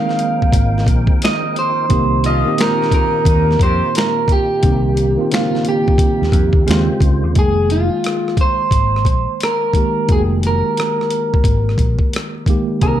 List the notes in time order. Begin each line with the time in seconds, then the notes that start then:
Already playing: D#3 F3 G#3 A#3 C4 D#4 A#4 F5 G5
0.09 snare
0.19 closed hi-hat
0.42 kick
0.53 G#1, kick, closed hi-hat
0.78 snare
0.87 A#1, kick, closed hi-hat
1.07 kick
1.22 D#5, finger snap, snare, closed hi-hat
1.56 C5, closed hi-hat
1.89 C2 A#2 D#3 A#3 C4 G4, kick, closed hi-hat
2.24 F3 C#4 F4 D#5, closed hi-hat
2.45 D#3 A#3 C4 G4
2.57 C3 D#3 A#3 C4 D#4 F4 A#4, finger snap, snare, closed hi-hat
2.82 snare
2.91 A#4, kick, closed hi-hat
3.25 D#2 C3 A#3 D#4, kick, closed hi-hat
3.51 snare
3.59 F2 D#3 C4 G4 C5, kick, closed hi-hat
3.95 A#4, finger snap, snare, closed hi-hat
4.28 kick, closed hi-hat
4.32 G4
4.63 C2 D#3 A#3 C4 G4, kick, closed hi-hat
4.97 closed hi-hat
5.17 D#3 A#3 C4 F4
5.30 C#3 A#3 C4 A#4, closed hi-hat
5.34 D#3 F4, finger snap, snare
5.55 snare
5.65 G4, closed hi-hat
5.88 kick
5.98 kick, closed hi-hat
6.21 D#2, snare
6.32 F2, kick, closed hi-hat
6.53 D#2, kick
6.66 D#2 C#3 D#3 G#3 C4 F4 C5, closed hi-hat
6.71 finger snap, snare
7.00 C#2, kick, closed hi-hat
7.23 D#2
7.34 F1 D#3 G#3 A#3 G5, kick, closed hi-hat
7.39 G#4
7.70 F4, closed hi-hat
8.04 cross-stick, closed hi-hat
8.28 cross-stick
8.37 C5, kick, closed hi-hat
8.71 G#1, kick, closed hi-hat
8.96 cross-stick
9.05 A#1, kick, closed hi-hat
9.40 A#4, cross-stick, closed hi-hat
9.73 D#3 G#3 A#3 G4, kick, closed hi-hat
10.07 F1 D#3 G#3 A#3 F#4, kick, closed hi-hat
10.12 G#4
10.17 G5
10.43 A#4, closed hi-hat
10.77 cross-stick, closed hi-hat
11.01 cross-stick
11.10 closed hi-hat
11.34 kick
11.44 G#1, kick, closed hi-hat
11.69 cross-stick
11.78 A#1, kick, closed hi-hat
11.99 kick
12.13 cross-stick, closed hi-hat
12.46 D#3 G#3 A#3 G4, kick, closed hi-hat
12.81 C2 D3 A#3 C4 D#4 G4 A#4, kick, closed hi-hat
12.87 D#3